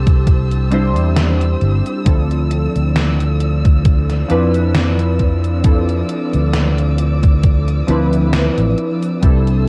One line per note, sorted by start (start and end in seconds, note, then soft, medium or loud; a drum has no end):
0.00 0.97 C2 medium
0.00 0.67 G3 medium
0.00 0.67 C4 medium
0.00 0.67 D4 medium
0.00 0.68 E4 medium
0.00 2.02 G4 medium
0.00 0.68 A4 medium
0.00 2.02 C5 medium
0.00 2.02 A5 medium
0.00 9.18 E6 medium
0.07 kick loud
0.07 closed hi-hat soft
0.07 cabasa medium
0.27 kick loud
0.27 closed hi-hat medium
0.27 cabasa soft
0.51 closed hi-hat soft
0.51 cabasa soft
0.71 2.01 G3 medium
0.71 2.01 C4 medium
0.71 2.02 D4 medium
0.71 2.02 E4 medium
0.71 2.02 C5 loud
0.71 closed hi-hat medium
0.96 1.54 E2 loud
0.96 closed hi-hat soft
0.96 cabasa medium
1.16 snare loud
1.16 closed hi-hat medium
1.16 cabasa soft
1.41 closed hi-hat soft
1.41 cabasa soft
1.61 1.80 G1 medium
1.61 closed hi-hat soft
1.86 closed hi-hat soft
1.86 cabasa soft
2.05 2.66 D2 medium
2.05 4.25 F3 medium
2.05 9.19 F3 medium
2.05 4.25 C4 medium
2.05 4.25 D4 medium
2.05 4.26 E4 medium
2.05 4.26 A4 medium
2.05 9.19 D5 medium
2.05 kick loud
2.05 closed hi-hat medium
2.05 cabasa soft
2.31 closed hi-hat soft
2.31 cabasa soft
2.51 closed hi-hat medium
2.76 4.22 D2 medium
2.76 closed hi-hat soft
2.76 cabasa medium
2.96 snare loud
2.96 closed hi-hat medium
2.96 cabasa soft
3.20 closed hi-hat soft
3.20 cabasa soft
3.40 closed hi-hat medium
3.65 kick loud
3.65 closed hi-hat soft
3.65 cabasa soft
3.85 kick loud
3.85 closed hi-hat medium
3.85 cabasa soft
4.10 snare soft
4.10 closed hi-hat soft
4.10 cabasa soft
4.28 6.02 F2 medium
4.28 5.59 F3 medium
4.28 5.59 C4 medium
4.28 5.60 D4 medium
4.28 5.60 E4 medium
4.28 5.60 B4 loud
4.28 closed hi-hat medium
4.54 closed hi-hat soft
4.54 cabasa medium
4.75 snare loud
4.75 closed hi-hat medium
4.75 cabasa soft
4.99 closed hi-hat soft
4.99 cabasa soft
5.19 kick medium
5.19 closed hi-hat soft
5.44 closed hi-hat soft
5.44 cabasa soft
5.63 7.83 F3 medium
5.63 7.83 C4 medium
5.63 7.84 D4 medium
5.63 7.84 E4 medium
5.63 7.84 A4 medium
5.63 9.19 D6 medium
5.63 kick loud
5.63 closed hi-hat medium
5.63 cabasa soft
5.89 closed hi-hat soft
5.89 cabasa soft
6.09 closed hi-hat medium
6.33 7.81 D2 medium
6.33 closed hi-hat soft
6.33 cabasa soft
6.53 snare loud
6.53 closed hi-hat medium
6.53 cabasa soft
6.78 closed hi-hat soft
6.78 cabasa soft
6.98 closed hi-hat medium
7.23 kick loud
7.23 closed hi-hat soft
7.23 cabasa medium
7.43 kick loud
7.43 closed hi-hat medium
7.43 cabasa soft
7.68 closed hi-hat soft
7.68 cabasa soft
7.87 8.48 D2 loud
7.87 9.17 F3 medium
7.87 9.18 C4 medium
7.87 9.18 D4 medium
7.87 9.18 E4 medium
7.87 9.19 B4 loud
7.87 closed hi-hat medium
8.13 closed hi-hat soft
8.13 cabasa medium
8.33 snare loud
8.33 closed hi-hat medium
8.33 cabasa soft
8.58 8.73 A1 loud
8.58 closed hi-hat soft
8.58 cabasa soft
8.78 closed hi-hat soft
9.02 closed hi-hat soft
9.02 cabasa soft
9.21 9.69 C2 medium
9.21 9.69 G3 medium
9.21 9.69 C4 medium
9.21 9.69 D4 medium
9.21 9.69 E4 medium
9.21 9.69 G4 medium
9.21 9.69 A4 medium
9.21 9.69 C5 medium
9.21 9.69 A5 medium
9.21 9.69 E6 medium
9.21 kick loud
9.21 closed hi-hat medium
9.21 cabasa soft
9.47 closed hi-hat soft
9.47 cabasa soft